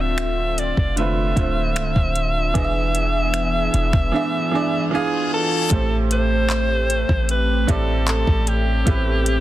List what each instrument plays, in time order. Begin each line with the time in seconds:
Already playing: 808-style bass D1, grand piano D3 A3 C4 F4 E5, analog synth pad D3 C4 F4 E5
0.00 alto saxophone E5
0.18 finger snap, closed hi-hat
0.58 analog synth pad D4, alto saxophone D5, closed hi-hat
0.77 808-style bass F1, alto saxophone D5, kick
0.96 grand piano D3 A3 C4 F4 B4, alto saxophone E5, closed hi-hat
1.35 808-style bass D1, grand piano D3 A3 C4 F4 C5, kick, closed hi-hat
1.76 808-style bass C1, finger snap, closed hi-hat
1.96 808-style bass D1, kick
2.15 closed hi-hat
2.54 808-style bass E1, grand piano E3 B3 D4 G#4 D#5, analog synth pad E3 B3 G#4, kick, closed hi-hat
2.64 grand piano E5
2.95 closed hi-hat
3.34 finger snap, closed hi-hat
3.74 808-style bass E1, closed hi-hat
3.93 808-style bass E1, finger snap, kick
4.12 grand piano E3 B3 D4 G#4 E5, reverse cymbal
4.51 grand piano E3 B3 D4 G#4 D5
4.91 grand piano E3 B3 D4 G#4 F5, analog synth pad F4 G#5, alto saxophone G#4
5.34 alto saxophone A4
5.70 808-style bass A1, grand piano A2 A3 C4 G4 C5, analog synth pad A3 C4 G4, kick, closed hi-hat
6.11 alto saxophone C5, closed hi-hat
6.50 clap, closed hi-hat
6.90 closed hi-hat
7.09 808-style bass A1, kick
7.29 alto saxophone B4, closed hi-hat
7.67 808-style bass A1, grand piano A2 A3 C4 G4 D5, alto saxophone A4, kick, closed hi-hat
8.07 alto saxophone A4, clap, closed hi-hat
8.27 808-style bass A1, kick
8.47 alto saxophone G4, closed hi-hat
8.85 808-style bass A1, grand piano A2 A3 B3 G4 B4, kick, closed hi-hat
8.94 grand piano C4
9.26 closed hi-hat